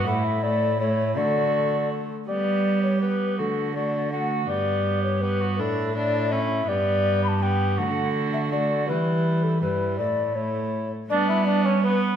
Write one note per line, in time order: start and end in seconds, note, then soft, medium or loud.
0.06 1.18 A2 medium
0.06 0.42 A3 medium
0.06 0.42 E4 medium
0.06 0.25 F#5 loud
0.24 0.45 E5 medium
0.43 0.79 A3 medium
0.43 0.79 E4 medium
0.43 0.80 D5 loud
0.80 1.16 A3 medium
0.80 1.19 E4 medium
0.80 1.16 C#5 loud
1.16 2.10 D3 medium
1.16 2.08 A3 medium
1.16 2.10 F#4 medium
1.16 1.89 D5 medium
2.28 3.40 G3 medium
2.28 2.98 B3 medium
2.28 2.98 G4 medium
2.28 2.80 D5 medium
2.83 3.01 C#5 medium
3.02 3.40 B3 soft
3.02 3.38 G4 soft
3.02 3.38 B4 medium
3.38 4.48 D3 medium
3.38 3.75 A3 soft
3.38 3.75 F#4 medium
3.38 3.75 A4 medium
3.75 4.12 A3 medium
3.75 4.11 F#4 soft
3.75 4.11 D5 medium
4.12 4.48 A3 medium
4.12 4.51 F#4 medium
4.12 4.48 F#5 medium
4.48 5.60 G2 medium
4.48 5.20 B3 medium
4.48 5.22 G4 medium
4.48 5.03 D5 medium
5.04 5.23 C#5 medium
5.21 5.60 B3 medium
5.21 5.43 G4 medium
5.21 5.58 B4 medium
5.41 5.61 F#4 soft
5.58 6.68 A2 medium
5.58 5.95 D4 medium
5.58 5.95 E4 medium
5.58 5.95 A4 medium
5.95 6.33 D4 medium
5.95 6.31 E4 medium
5.95 6.33 D5 medium
6.31 6.67 C#4 medium
6.31 6.68 E4 medium
6.31 6.70 E5 medium
6.68 7.79 G2 medium
6.68 7.37 B3 medium
6.68 7.38 G4 medium
6.68 7.23 D5 medium
7.24 7.29 B5 medium
7.28 7.44 A5 medium
7.42 7.79 B3 medium
7.42 7.80 G4 medium
7.42 7.78 G5 medium
7.78 8.90 D3 medium
7.78 8.51 A3 medium
7.78 8.51 F#4 medium
7.78 8.09 F#5 medium
8.33 8.39 E5 medium
8.52 8.87 A3 medium
8.52 8.90 F#4 medium
8.52 8.88 D5 medium
8.88 9.63 E3 medium
8.88 9.60 G3 medium
8.88 9.61 E4 medium
8.88 9.45 B4 medium
9.44 9.61 A4 medium
9.61 9.99 G2 medium
9.61 10.00 G3 soft
9.61 9.98 E4 medium
9.61 9.98 B4 medium
9.98 10.91 A2 soft
9.98 10.36 A3 soft
9.98 10.34 E4 soft
9.98 10.37 D5 medium
10.35 10.91 A3 medium
10.35 10.90 E4 soft
10.35 10.92 C#5 medium
11.09 12.16 G3 medium
11.09 11.80 B3 medium
11.09 11.28 D4 loud
11.09 11.27 D5 medium
11.28 11.46 E4 medium
11.28 11.45 E5 medium
11.46 11.67 D4 medium
11.46 11.64 D5 medium
11.65 11.84 C#4 medium
11.65 11.82 C#5 medium
11.83 12.16 B3 medium
11.83 12.16 B4 loud